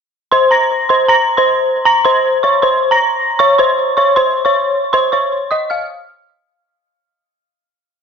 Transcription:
0.32 0.50 C5 medium
0.32 0.49 C6 medium
0.51 0.87 A#5 medium
0.51 0.87 A#6 medium
0.89 1.08 C5 medium
0.89 1.07 C6 medium
1.08 1.36 A#5 medium
1.08 1.36 A#6 medium
1.37 1.83 C5 medium
1.37 1.82 C6 medium
1.85 2.03 A#5 loud
1.85 2.04 A#6 medium
2.05 2.41 C5 medium
2.05 2.41 C6 medium
2.43 2.61 C#5 medium
2.43 2.61 C#6 medium
2.62 2.90 C5 medium
2.62 2.89 C6 medium
2.91 3.36 A#5 medium
2.91 3.37 A#6 medium
3.39 3.58 C#5 medium
3.39 3.57 C#6 loud
3.58 3.95 C5 medium
3.58 3.95 C6 medium
3.97 4.15 C#5 medium
3.97 4.15 C#6 medium
4.16 4.44 C5 medium
4.16 4.43 C6 loud
4.45 4.90 C#5 medium
4.45 4.90 C#6 medium
4.93 5.11 C5 medium
4.93 5.11 C6 loud
5.12 5.49 C#5 medium
5.12 5.48 C#6 medium
5.51 5.69 D#5 medium
5.51 5.69 D#6 medium
5.70 6.43 F5 medium
5.70 6.43 F6 medium

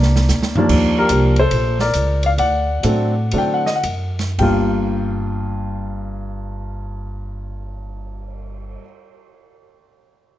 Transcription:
0.00 0.28 C2 medium
0.00 0.54 A#3 medium
0.00 0.54 D4 medium
0.00 snare soft
0.16 snare medium
0.29 0.68 D2 medium
0.29 snare medium
0.29 hi-hat pedal medium
0.42 snare medium
0.55 1.08 D#2 medium
0.55 1.09 F3 medium
0.55 1.09 G3 medium
0.55 1.09 A#3 medium
0.55 1.09 D4 medium
0.55 floor tom medium
0.69 1.09 D#2 medium
0.69 kick medium
0.69 crash medium
0.99 1.37 G4 medium
0.99 1.36 A#4 medium
1.09 1.50 C2 medium
1.09 1.35 F3 medium
1.09 1.36 G3 soft
1.09 1.35 A#3 soft
1.09 1.36 D4 medium
1.09 hi-hat pedal medium
1.09 ride medium
1.36 1.78 A4 medium
1.36 1.78 C5 medium
1.36 ride soft
1.51 1.93 A#1 medium
1.51 ride medium
1.79 2.20 A#4 medium
1.79 2.20 D5 medium
1.79 snare soft
1.94 2.37 C#2 medium
1.94 hi-hat pedal medium
1.94 ride medium
2.23 2.29 D5 medium
2.23 2.31 F5 medium
2.23 ride soft
2.38 2.82 D2 medium
2.38 3.35 D5 medium
2.38 3.36 F#5 medium
2.38 ride medium
2.83 3.31 A2 medium
2.83 3.12 F#3 medium
2.83 3.12 A3 medium
2.83 3.12 C4 medium
2.83 3.12 D4 medium
2.83 hi-hat pedal soft
2.83 ride medium
3.31 3.83 D3 medium
3.31 3.63 F#3 medium
3.31 3.63 A3 medium
3.31 3.63 C4 medium
3.31 3.63 D4 medium
3.31 ride medium
3.38 3.54 G5 medium
3.54 3.68 F#5 medium
3.66 3.75 D#5 medium
3.66 snare soft
3.76 3.84 F#5 medium
3.83 4.37 F#2 medium
3.83 hi-hat pedal soft
3.83 ride medium
4.19 snare soft
4.19 ride soft
4.38 8.75 G1 medium
4.38 8.81 G2 medium
4.38 8.81 G3 medium
4.38 8.82 A#3 medium
4.38 8.76 G5 medium
4.38 kick medium
4.38 crash medium
4.42 8.83 F4 medium
4.76 cymbal swell soft

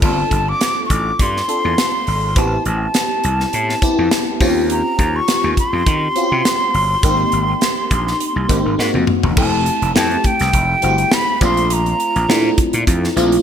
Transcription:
0.02 0.23 G1 medium
0.02 0.09 B3 medium
0.02 0.77 D4 medium
0.02 0.77 F4 medium
0.02 0.78 A4 medium
0.02 0.50 A5 medium
0.02 kick loud
0.02 crash medium
0.08 0.80 C4 medium
0.31 0.52 G1 medium
0.31 kick medium
0.31 closed hi-hat medium
0.49 0.84 D6 loud
0.61 snare loud
0.61 closed hi-hat medium
0.86 0.94 C#6 medium
0.90 1.10 A1 medium
0.90 1.23 D6 loud
0.90 kick medium
0.90 closed hi-hat medium
1.19 1.40 G2 loud
1.19 2.40 C6 loud
1.19 kick medium
1.19 closed hi-hat medium
1.36 snare soft
1.48 2.04 C4 medium
1.48 2.04 D4 medium
1.48 2.04 F4 medium
1.48 2.04 A4 medium
1.48 closed hi-hat medium
1.65 1.74 E2 medium
1.78 snare loud
1.78 closed hi-hat medium
2.07 2.36 G#1 medium
2.07 open hi-hat medium
2.36 2.56 A1 medium
2.36 3.11 B3 medium
2.36 3.11 C4 medium
2.36 3.11 E4 medium
2.36 3.12 G4 medium
2.36 2.66 A5 medium
2.36 kick loud
2.36 closed hi-hat medium
2.65 2.86 A1 medium
2.65 4.38 A5 medium
2.65 closed hi-hat medium
2.94 snare medium
2.94 closed hi-hat medium
3.24 3.44 C2 medium
3.24 closed hi-hat medium
3.40 snare soft
3.53 3.74 A2 medium
3.53 closed hi-hat medium
3.69 snare soft
3.82 4.38 B3 medium
3.82 4.38 C4 medium
3.82 4.38 E4 medium
3.82 4.38 G4 medium
3.82 kick medium
3.82 closed hi-hat medium
3.99 4.08 F2 medium
4.11 snare loud
4.11 closed hi-hat medium
4.40 4.81 D#2 medium
4.40 5.35 C4 medium
4.40 5.35 C#4 medium
4.40 5.35 F4 medium
4.40 5.35 G4 loud
4.40 kick loud
4.40 open hi-hat medium
4.70 5.18 A#5 loud
4.70 closed hi-hat medium
4.99 5.19 D#2 medium
4.99 kick medium
4.99 closed hi-hat medium
5.16 5.58 C#6 loud
5.28 snare loud
5.28 closed hi-hat medium
5.44 5.53 D#2 medium
5.57 8.76 C6 loud
5.57 kick medium
5.57 closed hi-hat medium
5.73 5.82 F2 medium
5.86 6.07 D#3 loud
5.86 kick loud
5.86 closed hi-hat medium
6.15 6.71 C4 medium
6.15 6.71 C#4 medium
6.15 6.72 F4 medium
6.15 6.23 F#4 medium
6.15 closed hi-hat medium
6.23 6.75 G4 medium
6.32 6.41 C3 loud
6.45 snare loud
6.45 closed hi-hat medium
6.74 6.94 G1 medium
6.74 open hi-hat medium
7.03 7.24 G#1 loud
7.03 7.78 A#3 medium
7.03 7.79 C4 medium
7.03 7.79 D#4 medium
7.03 7.79 G4 loud
7.03 kick loud
7.03 closed hi-hat medium
7.32 7.53 G#1 loud
7.32 closed hi-hat medium
7.61 snare medium
7.61 closed hi-hat medium
7.91 8.11 A#1 medium
7.91 kick medium
7.91 closed hi-hat medium
8.07 snare soft
8.20 closed hi-hat medium
8.36 8.45 C2 medium
8.48 8.60 G#1 medium
8.48 8.77 A#3 medium
8.48 8.77 C4 medium
8.48 8.78 D#4 medium
8.48 8.79 G4 medium
8.48 kick medium
8.48 closed hi-hat medium
8.65 8.75 G#1 medium
8.78 8.90 G#2 loud
8.78 9.26 A#3 medium
8.78 9.26 C4 medium
8.78 9.26 D#4 medium
8.78 9.27 F#4 medium
8.78 snare medium
8.94 9.04 F2 medium
8.94 high tom medium
9.07 mid tom medium
9.23 9.33 E1 medium
9.23 floor tom medium
9.37 9.68 F1 loud
9.37 9.74 A3 medium
9.37 9.75 C4 medium
9.37 9.75 E4 medium
9.37 9.75 G4 medium
9.37 9.92 A5 medium
9.37 kick loud
9.37 crash loud
9.66 closed hi-hat medium
9.82 9.91 F1 medium
9.82 closed hi-hat soft
9.94 10.16 F2 loud
9.94 10.50 A3 medium
9.94 10.51 C4 medium
9.94 10.51 E4 medium
9.94 10.51 G4 medium
9.94 10.28 A5 medium
9.94 snare loud
10.11 closed hi-hat soft
10.24 11.15 G5 loud
10.24 kick medium
10.24 closed hi-hat medium
10.40 10.50 C2 medium
10.40 snare soft
10.40 closed hi-hat medium
10.53 10.74 F1 medium
10.53 kick medium
10.53 closed hi-hat medium
10.82 11.03 G1 medium
10.82 11.38 A3 medium
10.82 11.38 C4 medium
10.82 11.38 E4 medium
10.82 10.90 F#4 medium
10.82 closed hi-hat medium
10.90 11.42 G4 medium
10.98 closed hi-hat medium
11.12 11.42 B5 loud
11.12 snare loud
11.41 11.93 A#1 loud
11.41 12.12 A3 medium
11.41 12.12 C4 medium
11.41 12.12 D4 medium
11.41 12.12 F4 medium
11.41 11.75 C6 medium
11.41 kick loud
11.41 closed hi-hat medium
11.57 closed hi-hat medium
11.70 12.59 A#5 loud
11.70 closed hi-hat medium
11.86 closed hi-hat soft
12.00 closed hi-hat medium
12.16 12.25 A#1 loud
12.16 closed hi-hat soft
12.29 12.49 A#2 loud
12.29 12.84 A3 medium
12.29 12.85 C4 medium
12.29 12.85 D4 medium
12.29 12.85 E4 medium
12.29 snare loud
12.58 kick medium
12.58 closed hi-hat medium
12.73 12.83 A#2 medium
12.73 closed hi-hat medium
12.87 13.07 F2 medium
12.87 kick medium
12.87 closed hi-hat medium
13.04 snare soft
13.16 13.36 A#1 medium
13.16 13.42 A3 medium
13.16 13.42 C4 medium
13.16 13.42 D4 medium
13.16 13.42 F4 medium
13.16 closed hi-hat medium
13.32 closed hi-hat medium

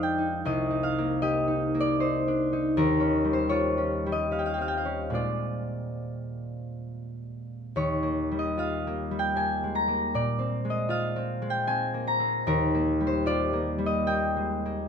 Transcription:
0.00 0.46 F2 soft
0.00 0.69 G3 soft
0.00 0.46 G#3 soft
0.00 0.36 D4 soft
0.00 0.17 D#4 soft
0.00 1.21 G4 soft
0.00 1.85 A#4 medium
0.00 1.99 C5 soft
0.00 0.44 D#5 medium
0.00 0.47 F5 medium
0.00 3.93 G5 medium
0.18 0.69 D#4 soft
0.45 2.80 C2 medium
0.45 1.21 D#5 medium
0.70 1.46 D#4 soft
0.83 1.49 F5 medium
0.98 1.73 A#3 soft
1.22 5.12 G4 soft
1.22 4.11 D#5 medium
1.48 1.99 D#4 soft
1.75 5.65 A#3 soft
1.80 2.13 D5 medium
2.00 2.52 D#4 soft
2.00 2.79 C5 medium
2.28 2.69 D4 soft
2.53 5.21 D#4 soft
2.77 5.20 D#2 medium
2.77 6.67 A#4 medium
3.00 3.76 C#4 soft
3.24 4.05 G3 soft
3.33 3.66 C5 medium
3.49 5.12 F4 medium
3.49 5.18 C#5 medium
3.77 4.30 C#4 soft
4.06 5.20 G3 soft
4.12 5.19 D#5 medium
4.31 4.84 C#4 soft
4.31 4.45 F5 medium
4.39 4.53 G5 medium
4.46 4.60 F5 medium
4.54 4.67 G5 medium
4.58 5.06 C4 soft
4.58 4.76 F5 medium
4.68 4.84 G5 medium
4.77 8.57 F5 medium
4.85 5.18 C#4 soft
5.10 7.76 A#2 soft
5.10 7.77 G#3 soft
5.10 7.78 C4 soft
5.10 8.56 F4 soft
5.15 7.79 D5 medium
7.76 10.21 D#2 soft
7.76 10.21 C#5 medium
8.03 8.86 A#3 soft
8.32 9.10 G3 soft
8.39 10.20 D#5 medium
8.58 10.88 F4 soft
8.58 10.89 F5 medium
8.87 9.35 A#3 soft
9.11 10.20 G3 soft
9.19 10.20 G5 medium
9.36 9.87 A#3 soft
9.36 10.04 G#5 medium
9.63 10.09 G#3 soft
9.75 12.06 A#5 medium
9.88 11.93 A#3 soft
10.14 12.51 A#2 soft
10.14 12.51 D5 medium
10.39 11.15 C4 soft
10.65 11.41 G#3 soft
10.70 11.05 D#5 medium
10.89 13.25 F4 soft
10.89 14.80 F5 medium
11.16 11.67 C4 soft
11.42 12.51 G#3 soft
11.50 11.84 G5 medium
11.67 12.18 C4 soft
11.67 12.51 G#5 medium
11.94 12.40 A#3 soft
12.07 14.88 A#5 medium
12.20 12.51 C4 soft
12.47 14.88 D#2 medium
12.47 14.88 A#4 medium
12.74 13.52 A#3 soft
13.00 13.77 G3 soft
13.07 13.40 C5 medium
13.26 14.88 F4 soft
13.26 14.32 D5 medium
13.53 14.06 A#3 soft
13.78 14.88 G3 soft
13.86 14.88 D#5 medium
14.07 14.64 A#3 soft
14.07 14.88 G5 medium
14.36 14.88 G#3 soft
14.65 14.88 A#3 soft

